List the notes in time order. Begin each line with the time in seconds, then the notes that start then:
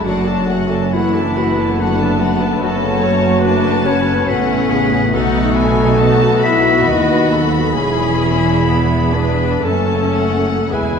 Already playing: F#3 A3 D4 F#4 D5
0.04 F#1 F#2 F#3 A3 D4 F#4 F#5
0.26 F#3 D4 A4 A5
0.47 A3 C#4 F#4 F#5
0.70 D4 A4 A5
0.93 E3 A3 B3 E4 F#4 F#5
1.15 D4 A4 A5
1.38 A3 F#4 F#5
1.59 D4 A4 A5
1.79 D3 A3 D4 F#4 F#5
2.00 A3 D4 A4 A5
2.20 F#3 A3 F#4 F#5
2.41 A3 D4 A4 A5
2.61 F#1 F#2 F#3 C#4 F#4 A4 A5
2.83 C#3
3.02 A3 C#5
3.24 C#4
3.43 A3 D4 F#4 B4 A5
3.65 A4
3.85 B3 C#4 F#4 C#5
4.07 A4
4.28 A1 A2 C#4 F#4 A4 B4 F#5
4.32 B3
4.50 A3
4.71 C#3 G#4
4.92 A3
5.12 B1 B2 A3 D#4 F#4 A4 F#5
5.34 F#3
5.55 B3 E4 G#5
5.78 D#4
5.97 F#4 A5
6.22 B4
6.42 F#4 E5 B5
6.46 E4
6.67 B4
6.87 D#2 B3 D#4 F#4 B4 D#5
7.11 B3
7.31 F#3 A4
7.55 B3
7.75 E1 E2 E3 C#4 E4 G#4
8.00 B2
8.23 B3
8.45 D4
8.67 B3 G#4
8.91 B4
9.14 B3 D4 G#4 B4
9.40 B4
9.63 F#1 F#2 A3 C#4 A4 A5
9.91 C#3
10.17 A3 F#5
10.46 C#4
10.71 E1 E2 G#3 E4 G#4 B4 G#5
10.82 E2
10.91 E2